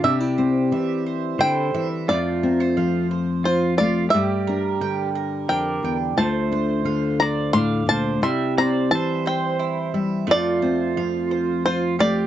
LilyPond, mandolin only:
\new Staff \with { instrumentName = "Mandolin" } { \time 3/4 \key c \mixolydian \tempo 4 = 88 g8 c''8 e''8 c''8 e'8 e''8 | a8 bes'16 c''16 f''8 c''8 f'8 f''8 | g8 bes'8 g''8 bes'8 d'8 g''8 | a8 c''8 f''8 c''8 d'8 f''8 |
g8 c''8 e''8 c''8 e'8 e''8 | a8 c''8 f''8 c''8 f'8 f''8 | }